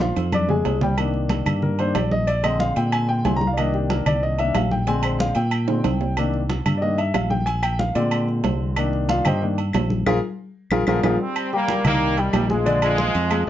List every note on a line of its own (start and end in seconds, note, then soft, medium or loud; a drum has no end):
0.00 0.11 A#1 loud
0.00 0.27 F3 medium
0.00 0.27 F4 medium
0.00 0.28 F5 medium
0.00 high conga loud
0.00 high timbale medium
0.16 0.62 F2 medium
0.16 high conga soft
0.16 high timbale medium
0.16 low agogo medium
0.32 0.47 D4 medium
0.32 0.47 D5 medium
0.32 0.47 D6 medium
0.32 high conga loud
0.32 low agogo medium
0.32 claves medium
0.49 0.76 G#3 medium
0.49 0.76 G#4 medium
0.49 0.76 G#5 medium
0.49 low conga medium
0.49 low timbale medium
0.65 1.41 C2 medium
0.65 low timbale medium
0.65 low agogo medium
0.81 0.95 G3 medium
0.81 0.96 G4 medium
0.81 0.96 G5 medium
0.81 low conga medium
0.81 low timbale medium
0.98 1.78 D#3 medium
0.98 1.78 A#3 medium
0.98 1.78 D4 medium
0.98 high conga soft
0.98 low agogo loud
0.98 claves medium
1.14 high conga soft
1.29 high conga loud
1.29 low timbale medium
1.29 low agogo medium
1.46 1.92 G2 medium
1.46 high conga soft
1.46 low conga medium
1.46 low agogo loud
1.46 claves medium
1.62 1.79 A#4 medium
1.62 high conga soft
1.62 low conga medium
1.79 1.94 D#3 soft
1.79 1.94 A#3 soft
1.79 1.94 D4 medium
1.79 1.95 C5 medium
1.79 high conga soft
1.79 low agogo medium
1.95 2.71 A#1 medium
1.95 2.11 D5 medium
1.95 high conga medium
1.95 low timbale loud
1.95 low agogo loud
1.95 claves medium
2.11 2.27 D#5 medium
2.11 high conga medium
2.27 2.43 D5 medium
2.27 high conga soft
2.27 low agogo medium
2.43 3.23 D3 medium
2.43 3.24 G#3 soft
2.43 3.24 C4 medium
2.43 2.60 D#5 loud
2.43 high conga soft
2.43 low agogo loud
2.43 claves medium
2.60 2.76 F5 medium
2.60 high conga medium
2.60 low timbale medium
2.76 3.22 A#2 loud
2.76 2.92 G5 medium
2.76 high conga soft
2.76 low agogo medium
2.92 3.08 G#5 loud
2.92 high conga soft
2.92 low agogo loud
2.92 claves medium
3.09 3.24 G5 medium
3.09 high conga soft
3.25 4.01 C2 medium
3.25 3.40 D3 medium
3.25 3.40 G#3 soft
3.25 3.40 C4 medium
3.25 3.36 G#5 medium
3.25 high conga medium
3.25 low timbale medium
3.25 low agogo medium
3.36 3.47 A#5 loud
3.41 high conga medium
3.47 3.58 F5 medium
3.53 3.56 D5 medium
3.57 4.37 D#3 medium
3.57 4.38 A#3 medium
3.57 4.38 D4 medium
3.57 3.73 D#5 medium
3.57 high conga soft
3.57 low agogo medium
3.57 claves medium
3.74 3.90 G4 medium
3.74 high conga soft
3.90 4.06 A#4 medium
3.90 high conga loud
3.90 low timbale medium
3.90 low agogo medium
4.06 4.51 C2 medium
4.06 4.22 D5 medium
4.06 high conga soft
4.06 low conga medium
4.06 low agogo loud
4.06 claves medium
4.23 4.38 D#5 medium
4.23 high conga soft
4.39 4.53 D#3 medium
4.39 4.54 A#3 soft
4.39 4.54 D4 medium
4.39 4.55 E5 loud
4.39 high conga soft
4.39 low agogo medium
4.55 5.30 A#1 loud
4.55 4.71 F5 medium
4.55 high conga medium
4.55 low timbale medium
4.55 low agogo loud
4.55 claves medium
4.71 4.87 G5 medium
4.71 high conga medium
4.87 5.33 D3 medium
4.87 5.34 G#3 medium
4.87 5.34 C4 medium
4.87 5.03 G#5 loud
4.87 high conga soft
4.87 low agogo medium
5.03 5.20 C5 medium
5.03 high conga soft
5.03 low agogo loud
5.03 claves medium
5.19 5.36 F5 medium
5.19 high conga loud
5.19 low timbale medium
5.35 5.81 A#2 medium
5.35 6.13 G5 medium
5.35 high conga soft
5.35 low agogo medium
5.51 high conga soft
5.51 low agogo loud
5.51 claves medium
5.68 5.83 D3 soft
5.68 5.83 G#3 soft
5.68 5.83 C4 medium
5.68 high conga soft
5.68 high timbale medium
5.84 6.60 C2 medium
5.84 high conga medium
5.84 high timbale medium
5.84 low agogo medium
6.01 low timbale medium
6.17 6.39 D#3 medium
6.17 6.39 A#3 medium
6.17 6.39 D4 medium
6.17 high conga soft
6.17 low agogo loud
6.17 claves medium
6.34 high conga soft
6.49 high conga loud
6.49 low timbale medium
6.49 low agogo medium
6.66 7.11 G2 loud
6.66 high conga soft
6.66 low conga medium
6.66 low agogo loud
6.66 claves medium
6.77 6.80 D5 medium
6.81 6.96 D#3 medium
6.81 6.97 A#3 soft
6.81 6.97 D4 medium
6.81 6.98 D#5 medium
6.81 high conga soft
6.98 7.14 E5 medium
6.98 high conga soft
6.98 low agogo medium
7.14 7.90 A#1 medium
7.14 7.30 F5 medium
7.14 high conga medium
7.14 low timbale medium
7.14 low agogo loud
7.14 claves medium
7.30 7.46 G5 medium
7.30 high conga medium
7.46 7.62 G#5 loud
7.46 high conga soft
7.46 low agogo medium
7.63 7.79 G5 medium
7.63 high conga soft
7.63 low agogo loud
7.63 claves medium
7.79 7.95 F5 medium
7.79 high conga loud
7.79 low timbale medium
7.95 8.41 A#2 loud
7.95 8.72 D3 medium
7.95 8.73 G#3 soft
7.95 8.73 C4 medium
7.95 8.26 D5 medium
7.95 high conga soft
7.95 low agogo medium
8.11 high conga soft
8.11 low agogo medium
8.11 claves medium
8.28 high conga soft
8.44 9.20 C2 medium
8.44 high conga medium
8.44 low timbale loud
8.44 low agogo loud
8.76 9.23 D#3 medium
8.76 9.23 A#3 medium
8.76 9.23 D4 medium
8.76 high conga soft
8.76 low agogo loud
8.76 claves medium
8.93 high conga soft
9.09 9.25 F4 medium
9.09 9.25 F5 medium
9.09 high conga medium
9.09 low timbale medium
9.09 low agogo medium
9.25 9.71 G2 loud
9.25 9.42 G4 medium
9.25 9.41 C5 medium
9.25 9.41 D#5 medium
9.25 9.41 G5 medium
9.25 high conga soft
9.25 low conga medium
9.25 low agogo loud
9.25 claves medium
9.42 9.56 D#3 medium
9.42 9.57 A#3 soft
9.42 9.57 D4 medium
9.42 high conga soft
9.58 high conga soft
9.58 low agogo medium
9.73 10.04 A#1 loud
9.73 high conga medium
9.73 low timbale loud
9.73 low agogo loud
9.73 claves medium
9.90 high conga medium
10.06 10.19 A#1 loud
10.06 10.17 F4 loud
10.06 10.17 G#4 loud
10.06 10.17 A#4 loud
10.06 high conga loud
10.06 high timbale loud
10.06 claves loud
10.71 10.83 A#1 loud
10.71 10.82 F4 loud
10.71 10.82 G#4 loud
10.71 10.82 A#4 loud
10.71 high conga loud
10.71 high timbale medium
10.71 claves loud
10.87 11.00 A#1 loud
10.87 11.19 D3 medium
10.87 11.19 F3 medium
10.87 10.98 F4 loud
10.87 10.98 G#4 loud
10.87 10.99 A#4 loud
10.87 high conga loud
10.87 high timbale medium
10.87 claves loud
11.03 11.16 A#1 loud
11.03 11.15 F4 loud
11.03 11.15 G#4 loud
11.03 11.15 A#4 medium
11.03 high conga medium
11.03 high timbale loud
11.03 claves medium
11.21 11.53 G3 medium
11.21 11.53 C4 medium
11.36 high conga soft
11.36 low agogo loud
11.36 claves medium
11.53 11.79 G3 medium
11.53 11.84 G3 medium
11.53 11.84 A#3 loud
11.53 11.80 G4 medium
11.53 11.80 G5 medium
11.53 high conga soft
11.68 high conga loud
11.68 low timbale medium
11.68 low agogo medium
11.84 12.30 C2 loud
11.84 12.12 D#3 medium
11.84 12.16 G3 medium
11.84 12.16 A#3 loud
11.84 12.12 D#4 medium
11.84 12.12 D#5 medium
11.84 high conga soft
11.84 low conga medium
11.84 low agogo loud
11.84 claves medium
12.02 high conga soft
12.17 12.51 D#3 medium
12.17 12.44 G3 medium
12.17 12.51 G3 medium
12.17 12.44 G4 medium
12.17 12.45 G5 medium
12.17 high conga soft
12.17 low agogo medium
12.33 13.09 A#1 loud
12.33 high conga medium
12.33 low timbale loud
12.33 low agogo loud
12.33 claves medium
12.50 12.82 F3 medium
12.50 12.63 G#3 medium
12.50 12.81 G#3 loud
12.50 12.63 G#4 medium
12.50 12.64 G#5 medium
12.50 high conga medium
12.66 12.93 D3 loud
12.66 12.93 D4 medium
12.66 12.93 D5 medium
12.66 high conga soft
12.66 low agogo medium
12.82 13.44 F3 medium
12.82 13.43 G#3 loud
12.82 high conga soft
12.82 low agogo loud
12.82 claves medium
12.98 13.25 F3 medium
12.98 13.25 F4 medium
12.98 13.26 F5 medium
12.98 high conga loud
12.98 low timbale medium
13.15 13.45 F2 loud
13.15 high conga soft
13.15 low agogo medium
13.31 13.44 G#3 medium
13.31 13.44 G#4 medium
13.31 13.45 G#5 medium
13.31 high conga soft
13.31 low agogo loud
13.31 claves medium